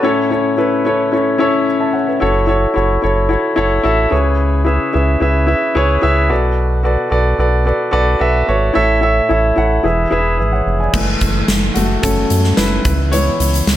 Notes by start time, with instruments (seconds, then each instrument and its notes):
0.03 grand piano A2 C#4 E4 A4 C#5
0.30 grand piano C#4 E4 A4 C#5
0.57 grand piano C#4 E4 A4 B4
0.85 grand piano C#4 E4 A4 C#5
1.12 grand piano C#4 E4 A4 C#5
1.38 grand piano C#4 E4 A4 C#5
1.80 grand piano E5 A5
1.93 grand piano C#5 F#5
2.07 grand piano B4 E5
2.20 analog synth bass F#1, grand piano E4 F#4 A4 C#5
2.47 grand piano E4 F#4 A4 C#5
2.74 analog synth bass F#1, grand piano E4 F#4 A4 C#5
3.02 analog synth bass F#1, grand piano E4 F#4 A4 C#5
3.29 grand piano E4 F#4 A4 C#5
3.56 analog synth bass F#1, grand piano E4 F#4 A4 C#5
3.83 analog synth bass A1, grand piano E4 F#4 A4 E5
4.10 analog synth bass C#2, grand piano C#3 E4 G#4 B4 C#5
4.65 grand piano E4 G#4 B4 E5
4.93 analog synth bass C#2, grand piano E4 G#4 B4 E5
5.20 analog synth bass C#2, grand piano E4 G#4 B4 E5
5.47 grand piano E4 G#4 B4 E5
5.75 analog synth bass C#2, grand piano E4 G#4 B4 C#5
6.02 analog synth bass C#2, grand piano E4 G#4 B4 E5
6.29 analog synth bass B1, grand piano B2 F#4 A4 B4 D5
6.83 grand piano F#4 A4 B4 D5
7.10 analog synth bass B1, grand piano F#4 A4 B4 D5
7.38 analog synth bass B1, grand piano F#4 A4 B4 D5
7.65 grand piano F#4 A4 B4 D5
7.91 analog synth bass B1, grand piano F#4 A4 B4 D5
8.19 analog synth bass B1, grand piano F#4 A4 B4 E5
8.47 analog synth bass G#1, grand piano F#4 A4 B4 C#5
8.73 analog synth bass A1, grand piano A2 E4 A4 C#5 E5
9.01 grand piano E4 A4 C#5 E5
9.29 analog synth bass A1, grand piano E4 A4 C#5 E5
9.56 analog synth bass A1, grand piano E4 A4 C#5 F#5
9.83 analog synth bass E1, grand piano E3 E4 G#4 B4 E5
10.11 analog synth bass E1, grand piano E4 G#4 B4 E5
10.39 analog synth bass G#1, grand piano B4 E5
10.52 grand piano C#5 F#5
10.67 analog synth bass F1
10.80 grand piano D5 G#5
10.93 analog synth bass F#1, grand piano E3 G#3 A3, kick, crash
11.21 analog synth bass F#1, kick, closed hi-hat
11.48 analog synth bass F#1, snare, closed hi-hat
11.74 analog synth bass F#1, grand piano A3 F#4, closed hi-hat
12.02 analog synth bass F#1, grand piano C#4 A4, kick, closed hi-hat
12.30 analog synth bass F#2, closed hi-hat
12.44 snare
12.57 analog synth bass F#1, grand piano E4 B4, snare, closed hi-hat
12.85 analog synth bass C#2, kick, closed hi-hat
13.12 grand piano E3 G#3 B3 E4 C#5, closed hi-hat
13.40 analog synth bass C#2, closed hi-hat
13.54 closed hi-hat
13.67 analog synth bass C#2, snare, closed hi-hat